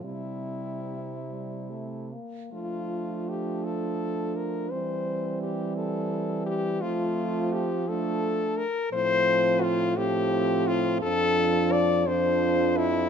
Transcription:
<<
  \new Staff \with { instrumentName = "French horn" } { \time 6/8 \key f \major \tempo 4. = 57 e'2~ e'8 r8 | f'4 g'8 a'4 bes'8 | c''4 g'8 a'4 g'8 | f'4 g'8 a'4 bes'8 |
c''4 f'8 g'4 f'8 | \key d \dorian a'4 d''8 c''4 e'8 | }
  \new Staff \with { instrumentName = "French horn" } { \time 6/8 \key f \major c'2~ c'8 r8 | d'2. | c'2. | c'4. d'4 r8 |
c'4. c'4. | \key d \dorian d'4. d'4. | }
  \new Staff \with { instrumentName = "French horn" } { \clef bass \time 6/8 \key f \major g4. g8 a8 bes8 | a2. | g2. | a4. a4 r8 |
f4. f4. | \key d \dorian f4. f4. | }
  \new Staff \with { instrumentName = "French horn" } { \clef bass \time 6/8 \key f \major c2~ c8 r8 | f2. | e2. | f2~ f8 r8 |
a,2. | \key d \dorian f,2. | }
>>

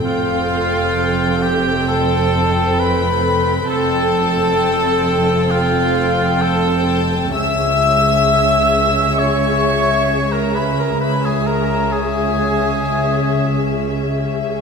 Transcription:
<<
  \new Staff \with { instrumentName = "Violin section" } { \time 4/4 \key f \lydian \tempo 4 = 66 f''4. g''8 a''4 b''4 | a''2 f''4 a''4 | e'''2 cis'''4~ cis'''16 bes''16 b''16 bes''16 | b''16 gis''16 bes''8 gis''2 r4 | }
  \new Staff \with { instrumentName = "Violin section" } { \time 4/4 \key f \lydian g''1 | g''1 | e''1 | e''1 | }
  \new Staff \with { instrumentName = "Cor anglais" } { \time 4/4 \key f \lydian f'4. g'8 a'4 b'4 | a'2 f'4 a'8. r16 | e''2 cis''4~ cis''16 bes'16 b'16 bes'16 | b'16 gis'16 bes'8 gis'2 r4 | }
  \new Staff \with { instrumentName = "Viola section" } { \time 4/4 \key f \lydian <c' a'>1 | <c' a'>1 | <cis' gis'>1 | <cis' gis'>1 | }
  \new Staff \with { instrumentName = "Cello section" } { \clef bass \time 4/4 \key f \lydian f,1 | f,1 | cis,1 | cis,1 | }
  \new Staff \with { instrumentName = "Double bass section" } { \clef bass \time 4/4 \key f \lydian f,,1 | f,,1 | cis,1 | cis,1 | }
>>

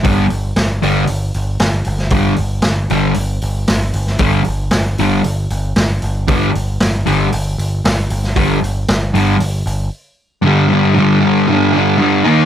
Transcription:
<<
  \new Staff \with { instrumentName = "Distorted electric guitar" } { \clef bass \time 4/4 \key c \dorian \tempo 4 = 115 <g, d g>8 r4 <g, d g>8 r2 | <g, d g>8 r4 <g, d g>8 r2 | <g, d g>8 r4 <g, d g>8 r2 | <g, d g>8 r4 <g, d g>8 r2 |
<g, d g>8 r4 <g, d g>8 r2 | <g, d g>8 <d g>8 <g, d g>8 <d g>8 <g, d g>8 <d g>8 <g, d g>8 <ees bes ees'>8 | }
  \new Staff \with { instrumentName = "Picked electric bass" } { \clef bass \time 4/4 \key c \dorian g,,8 g,,8 g,,8 g,,8 g,,8 g,,8 g,,8 g,,8 | g,,8 g,,8 g,,8 g,,8 g,,8 g,,8 g,,8 g,,8 | g,,8 g,,8 g,,8 g,,8 g,,8 g,,8 g,,8 g,,8 | g,,8 g,,8 g,,8 g,,8 g,,8 g,,8 g,,8 g,,8 |
g,,8 g,,8 g,,8 g,,8 g,,8 g,,8 r4 | r1 | }
  \new DrumStaff \with { instrumentName = "Drums" } \drummode { \time 4/4 <hho bd>8 hho8 <hho sn>8 hho8 hho8 hho8 <hho sn>8 hho16 sn16 | <hho bd>8 hho8 <hho sn>8 hho8 hho8 hho8 <hho sn>8 hho16 sn16 | <hho bd>8 hho8 <hho sn>8 hho8 hho8 hho8 <hho sn>8 hho8 | <hho bd>8 hho8 <hho sn>8 hho8 hho8 hho8 <hho sn>8 hho16 sn16 |
<hho bd>8 hho8 <hho sn>8 hho8 hho8 hho8 r4 | r4 r4 r4 r4 | }
>>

